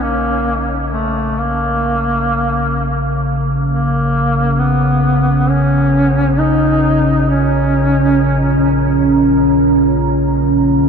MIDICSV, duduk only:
0, 0, Header, 1, 2, 480
1, 0, Start_track
1, 0, Tempo, 500000
1, 10453, End_track
2, 0, Start_track
2, 0, Title_t, "Duduk"
2, 0, Program_c, 0, 69
2, 22, Note_on_c, 0, 58, 88
2, 642, Note_off_c, 0, 58, 0
2, 886, Note_on_c, 0, 57, 71
2, 1338, Note_on_c, 0, 58, 80
2, 1352, Note_off_c, 0, 57, 0
2, 3086, Note_off_c, 0, 58, 0
2, 3548, Note_on_c, 0, 58, 80
2, 4405, Note_on_c, 0, 59, 79
2, 4420, Note_off_c, 0, 58, 0
2, 5271, Note_on_c, 0, 61, 94
2, 5286, Note_off_c, 0, 59, 0
2, 6137, Note_on_c, 0, 63, 91
2, 6151, Note_off_c, 0, 61, 0
2, 7006, Note_off_c, 0, 63, 0
2, 7012, Note_on_c, 0, 61, 88
2, 8721, Note_off_c, 0, 61, 0
2, 10453, End_track
0, 0, End_of_file